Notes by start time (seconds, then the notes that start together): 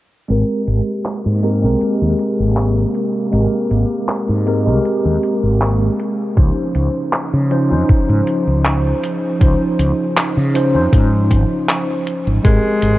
0.28 G#1 C3 G#3 A#3 C4 G4 A#4, closed hi-hat
0.68 G#1, closed hi-hat
1.05 clap, closed hi-hat
1.26 G#2
1.43 G#3 C4 G4 A#4, closed hi-hat
1.62 C2 G#3 C4 G4 A#4
1.81 closed hi-hat
2.02 D#2
2.19 closed hi-hat
2.40 G#1
2.57 clap, closed hi-hat
2.95 closed hi-hat
3.32 G#1 G#3 C4 G4 A#4, closed hi-hat
3.71 G#1, closed hi-hat
4.09 clap, closed hi-hat
4.29 G#2
4.46 G#3 C4 G4 A#4, closed hi-hat
4.65 C2 G#3 C4 G4 A#4
4.85 closed hi-hat
5.05 D#2
5.23 closed hi-hat
5.43 G#1
5.61 clap, closed hi-hat
5.99 closed hi-hat
6.36 C#2 C#3 F3 C#4 D#4 C5, kick, closed hi-hat
6.75 C#2, closed hi-hat
7.13 clap, closed hi-hat
7.33 C#3
7.50 F3 C#4 D#4 C5, closed hi-hat
7.69 F2 F3 C#4 D#4 C5
7.89 muted fretless electric bass stroke, kick, closed hi-hat
8.09 G#2
8.27 closed hi-hat
8.47 C#2
8.65 clap, closed hi-hat
9.03 closed hi-hat
9.39 C#2 F3 C#4 D#4 C5, kick, closed hi-hat
9.79 C#2, closed hi-hat
10.17 clap, closed hi-hat
10.37 C#3
10.54 F3 C#4 D#4 C5, closed hi-hat
10.73 F2 F3 C#4 D#4 C5
10.93 G#2, kick, closed hi-hat
11.31 G#1, kick, closed hi-hat
11.69 clap, closed hi-hat
12.07 closed hi-hat
12.27 G#1
12.43 G#1 G#3 C4 G4 A#4, kick, closed hi-hat
12.82 G#1, closed hi-hat